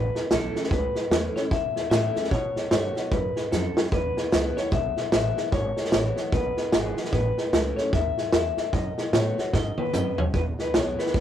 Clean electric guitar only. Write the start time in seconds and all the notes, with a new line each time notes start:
Already playing: B4
0.33 A4
0.73 B4
1.36 C#5
1.51 E5
1.90 E5
2.31 C#5
2.71 C#5
3.12 B4
3.52 A4
3.93 B4
4.57 C#5
4.72 E5
5.12 E5
5.52 C#5
5.92 C#5
6.33 B4
6.73 G#4
7.12 B4
7.76 C#5
7.94 E5
8.33 E5
8.74 D#5
9.14 C#5
9.54 D#5
9.79 B4
9.95 D#5
10.18 C#5
10.35 B4
10.61 B4
10.75 C#5
10.99 B4